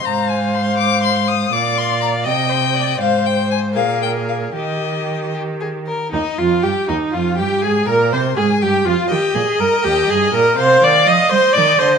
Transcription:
X:1
M:6/8
L:1/16
Q:3/8=81
K:Eb
V:1 name="Violin"
b2 a2 c'2 d'2 c'2 e'2 | d'2 c'2 b2 g6 | f2 g2 a2 f2 g2 f2 | e6 z6 |
e2 f2 g2 e2 f2 g2 | a2 b2 c'2 a2 g2 f2 | g2 a2 b2 g2 a2 b2 | c'2 d'2 e'2 c'2 d'2 c'2 |]
V:2 name="Viola"
c12 | d6 e2 c2 d2 | c6 B6 | G8- G z3 |
E2 F2 G2 E2 F2 G2 | A2 B2 c2 A2 G2 F2 | G2 A2 B2 G2 A2 B2 | c2 d2 e2 c2 d2 c2 |]
V:3 name="Violin"
f12 | f6 e6 | c6 A6 | G6 G2 A2 B2 |
E2 F2 G2 E2 F2 G2 | A2 B2 c2 A2 G2 F2 | e12 | f6 e6 |]
V:4 name="Cello" clef=bass
A,,12 | B,,6 C,6 | A,,6 B,,6 | E,8- E,2 z2 |
E,,2 F,,2 G,,2 E,,2 F,,2 G,,2 | A,,2 B,,2 C,2 A,,2 G,,2 F,,2 | E,2 B,,2 G,,2 E,,2 G,,2 B,,2 | C,2 E,2 F,2 G,2 E,2 D,2 |]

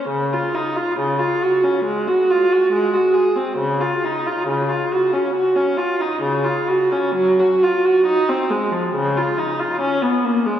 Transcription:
X:1
M:4/4
L:1/16
Q:1/4=69
K:Db
V:1 name="Viola"
D, F E F D, F G D A, G F G A, G A C | D, F E F D, F G D G D F E D, F G D | G, G F G E C A, F, D, F E F D _C B, A, |]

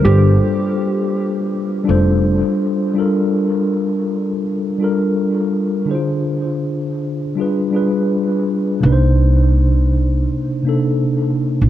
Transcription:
X:1
M:4/4
L:1/16
Q:"Swing 16ths" 1/4=82
K:Gm
V:1 name="Soft synth lead"
G12 z4 | z16 | z16 | z16 |]
V:2 name="Tine electric piano"
[G,DFAc]6- [G,DFAc] z3 [G,DFAc]6 | [G,DFAB]6- [G,DFAB] z3 [G,DFAB]6 | [D,D=EF_Ac]6- [D,DEFAc] z [G,DFA=B]2 [G,DFAB]6 | [C,B,DE=Bc]6- [C,_B,DE=Bc] z3 [C,_B,DEA]6 |]
V:3 name="Upright bass" clef=bass
G,,,2 z8 F,,,3 z3 | z16 | z16 | C,,8 z6 z B,,, |]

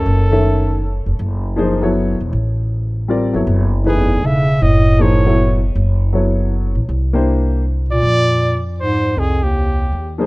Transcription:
X:1
M:3/4
L:1/8
Q:"Swing" 1/4=158
K:F#dor
V:1 name="Trumpet"
A4- A z | z6 | z6 | z2 G2 e2 |
d2 c3 z | z6 | z4 z =d- | [K:Fdor] d3 z c2 |
A G4 z |]
V:2 name="Grand piano"
[A,CFBd] [D,A,Ace]3 z2 | z2 [^E,^A,DG^B] [F,=B,=E=Ac]2 z | z4 [=G,^B,^E^A=d] [F,=B,=E=Ac]- | [F,B,EAc] z [E,A,DGB]3 z |
z2 [^E,^A,DG^B] [F,=B,=E=Ac]2 z | z2 [F,B,EAc]3 z | z [_B,=DE=G=c]3 z2 | [K:Fdor] z6 |
z4 z [F,B,EAc] |]
V:3 name="Bass clarinet" clef=bass
F,,4- F,, z | z6 | z6 | z2 E,,2 C,2 |
A,,2 A,,3 z | z6 | z4 z _B,,- | [K:Fdor] B,,3 z A,,2 |
F,, E,,4 z |]
V:4 name="Upright bass" clef=bass
F,,,4- F,,, ^E,,, | F,,,4- F,,, E,,, | A,,,4- A,,, =G,,, | F,,,4 E,,,2 |
F,,,6 | F,,,4- F,,, A,,, | =C,,6 | [K:Fdor] F,,6 |
C,,4 E,,2 |]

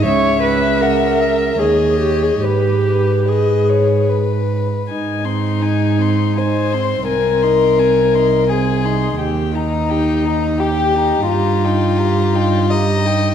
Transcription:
X:1
M:3/4
L:1/16
Q:1/4=84
K:G#m
V:1 name="Violin"
e8 c4 | B8- B3 z | [K:Ab] a2 c'2 a2 c'2 a2 c'2 | a2 c'2 a2 c'2 a2 c'2 |
g2 b2 g2 b2 g2 b2 | b2 g2 b2 g2 b2 g2 |]
V:2 name="Violin"
e4 f2 e2 d4 | B4 d2 c2 B4 | [K:Ab] z2 E6 c4 | B8 A4 |
z2 E6 G4 | F8 e4 |]
V:3 name="Viola"
c2 B2 A4 G2 =G ^G | =G4 ^G4 z4 | [K:Ab] E2 C2 E2 C2 E2 C2 | C2 E2 C2 E2 C2 E2 |
G2 E2 G2 E2 G2 E2 | G2 E2 G2 E2 G2 E2 |]
V:4 name="Cello" clef=bass
C,,8 D,,4 | G,,8- G,,3 z | [K:Ab] A,,12 | C,,12 |
E,,12 | G,,12 |]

